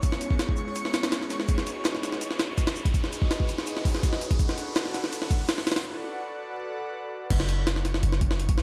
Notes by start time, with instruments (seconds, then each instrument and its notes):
Already playing: synth texture C#5 C#6, riser
0.03 analog synth pad G#3 B3 C#4 E4 G#4, kick, closed hi-hat, shaker
0.12 snare
0.21 closed hi-hat, shaker
0.30 kick, snare
0.39 snare, closed hi-hat, shaker
0.49 kick
0.56 analog synth pad G#3 B3 C#4 E4 G#4, shaker
0.68 closed hi-hat
0.76 closed hi-hat, shaker
0.85 snare
0.94 snare, closed hi-hat, shaker
1.03 snare, closed hi-hat
1.11 snare, closed hi-hat, shaker
1.21 snare, closed hi-hat
1.30 snare, closed hi-hat, shaker
1.39 snare, closed hi-hat
1.48 analog synth pad D#4 F#4 G#4 B4 D#5, kick, closed hi-hat, shaker
1.58 snare
1.66 closed hi-hat, shaker
1.84 snare, closed hi-hat, shaker
1.95 snare
2.03 analog synth pad D#4 F#4 G#4 B4 D#5, snare, closed hi-hat, shaker
2.12 snare
2.21 closed hi-hat, shaker
2.31 snare
2.39 snare, closed hi-hat, shaker
2.58 kick, snare, closed hi-hat, shaker
2.67 snare, closed hi-hat
2.75 shaker
2.85 kick, closed hi-hat
2.94 analog synth pad D#4 F#4 G#4 B4 D#5, kick, closed hi-hat, shaker
3.04 snare
3.13 closed hi-hat, shaker
3.21 kick, snare
3.30 snare, closed hi-hat, shaker
3.40 kick
3.48 analog synth pad D#4 F#4 G#4 B4 D#5, closed hi-hat, shaker
3.58 snare
3.66 closed hi-hat, shaker
3.77 snare
3.85 kick, open hi-hat, shaker
3.95 snare
4.03 kick, snare, closed hi-hat, shaker
4.12 snare, closed hi-hat
4.21 closed hi-hat, shaker
4.31 kick, closed hi-hat
4.39 analog synth pad D4 F#4 A4 B4 F#5, kick, closed hi-hat, shaker
4.49 snare
4.58 closed hi-hat, shaker
4.75 snare, closed hi-hat, shaker
4.86 snare
4.94 analog synth pad F#4 A4 B4 D5 F#5, snare, closed hi-hat, shaker
5.04 snare
5.13 closed hi-hat, shaker
5.22 snare
5.30 kick, closed hi-hat, shaker
5.48 snare, closed hi-hat, shaker
5.58 snare, closed hi-hat
5.67 snare, closed hi-hat, shaker
5.72 snare, closed hi-hat
5.76 snare, closed hi-hat
5.84 analog synth pad F#4 A4 B4 D5 F#5
6.39 analog synth pad F#4 A4 B4 D5 F#5
7.30 808-style bass F#1, synth texture C#5 C#6, kick, closed hi-hat, crash
7.40 snare
7.49 closed hi-hat
7.67 snare, closed hi-hat
7.76 snare
7.85 snare, closed hi-hat
7.94 snare
8.03 808-style bass F#1, closed hi-hat
8.13 snare
8.21 kick, closed hi-hat
8.31 snare
8.40 closed hi-hat
8.49 kick, closed hi-hat
8.58 808-style bass F#2, snare